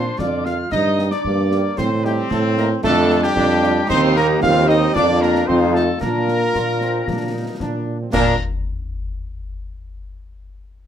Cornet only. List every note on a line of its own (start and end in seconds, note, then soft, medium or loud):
0.00 0.20 C5 loud
0.19 0.45 D5 medium
0.46 0.58 F5 medium
0.71 1.09 D#5 loud
1.11 1.79 D5 loud
1.77 2.07 C5 loud
2.05 2.33 G4 loud
2.32 2.57 A4 medium
2.58 2.70 A#4 loud
2.84 3.21 A4 loud
3.23 3.86 G4 loud
3.89 4.01 C5 loud
4.16 4.28 A#4 loud
4.42 4.70 F5 loud
4.68 4.96 D#5 loud
4.94 5.23 D5 loud
5.22 5.49 A#4 loud
5.47 5.75 C5 loud
5.74 6.00 A4 loud
6.01 7.83 A#4 loud
8.13 8.35 A#4 loud